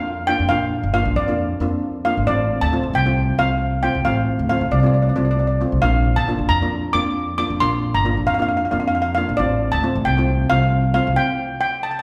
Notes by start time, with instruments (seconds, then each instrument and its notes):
Already playing: upright bass F2, steel pan D4 F4 F5
0.27 steel pan A#3 D4 F4 G5
0.39 upright bass F2
0.49 upright bass A#1, steel pan A#3 D4 F4 F5
0.83 upright bass G1
0.94 steel pan A#3 D4 F4 F5
1.05 upright bass A#1
1.16 upright bass F2, steel pan D5
1.28 steel pan A#3 D4 F4
1.60 upright bass F2, steel pan A#3 D4 F4
2.05 steel pan A#3 D4 F4 F5
2.17 upright bass G#1
2.27 upright bass A1, steel pan A3 C4 F4 D5
2.61 upright bass D2, steel pan A5
2.73 steel pan A3 C4 F4
2.83 upright bass A1
2.93 upright bass C2, steel pan G5
3.06 steel pan A3 C4 F4
3.38 upright bass C2, steel pan A3 C4 F4 F5
3.83 steel pan A3 C4 F4 G5
3.95 upright bass C2
4.05 upright bass A1, steel pan A3 C4 F4 F5
4.39 upright bass D2
4.49 steel pan A3 C4 F4 F5
4.61 upright bass A1
4.71 upright bass C2, steel pan D5
4.80 steel pan A3 C4 D5
4.84 steel pan F4 D5
4.94 steel pan D5
5.02 steel pan D5
5.09 steel pan D5
5.16 upright bass C2, steel pan A3 C4 F4 D5
5.25 steel pan D5
5.31 steel pan D5
5.39 steel pan D5
5.47 steel pan D5
5.61 steel pan A3 C4 F4
5.72 upright bass C2
5.82 upright bass A#1, steel pan A#3 D4 F4 F5
6.16 upright bass G1, steel pan A5
6.28 steel pan A#3 D4 F4
6.39 upright bass A#1
6.49 upright bass F2, steel pan A#5
6.62 steel pan A#3 D4 F4
6.93 upright bass F2, steel pan A#3 D4 F4 D6
7.38 steel pan A#3 D4 F4 D6
7.50 upright bass F2
7.60 upright bass A#1, steel pan A#3 D4 F4 C6
7.94 upright bass G1, steel pan A#5
8.05 steel pan A#3 D4 F4
8.17 upright bass A#1
8.27 upright bass F2, steel pan F5
8.34 steel pan F5
8.39 steel pan A#3 D4 F4 F5
8.49 steel pan F5
8.57 steel pan F5
8.65 steel pan F5
8.71 upright bass F2, steel pan A#3 D4 F4 F5
8.80 steel pan F5
8.88 steel pan F5
8.95 steel pan F5
9.02 steel pan F5
9.15 steel pan A#3 D4 F4 F5
9.29 upright bass A#1
9.37 upright bass A1, steel pan A3 C4 F4 D5
9.72 upright bass D2, steel pan A5
9.83 steel pan A3 C4 F4
9.95 upright bass A1
10.05 upright bass C2, steel pan G5
10.17 steel pan A3 C4 F4
10.50 upright bass C2, steel pan A3 C4 F4 F5
10.94 steel pan A3 C4 F4 F5
11.07 upright bass C2
11.16 steel pan G5
11.61 steel pan G5
11.83 steel pan A5
11.91 steel pan A5